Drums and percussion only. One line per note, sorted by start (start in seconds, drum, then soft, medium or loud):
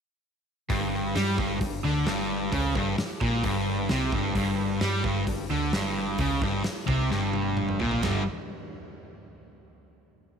0.70 kick loud
0.70 open hi-hat medium
1.16 snare loud
1.16 open hi-hat medium
1.38 kick loud
1.61 kick loud
1.61 open hi-hat medium
2.06 snare loud
2.06 open hi-hat medium
2.52 kick loud
2.52 open hi-hat medium
2.75 kick loud
2.98 snare loud
2.98 open hi-hat medium
3.21 kick loud
3.43 kick loud
3.43 open hi-hat medium
3.89 snare loud
3.89 open hi-hat medium
4.12 kick loud
4.35 kick loud
4.35 open hi-hat medium
4.81 snare loud
4.81 open hi-hat medium
5.04 kick loud
5.27 kick medium
5.27 open hi-hat medium
5.73 snare loud
5.73 open hi-hat medium
6.18 kick loud
6.18 open hi-hat medium
6.42 kick loud
6.64 snare loud
6.64 open hi-hat medium
6.88 kick loud
7.11 snare medium
7.33 high tom medium
7.57 mid tom medium
7.69 mid tom medium
7.80 floor tom medium
7.91 floor tom medium
8.03 snare loud
8.03 floor tom loud
8.03 ride bell medium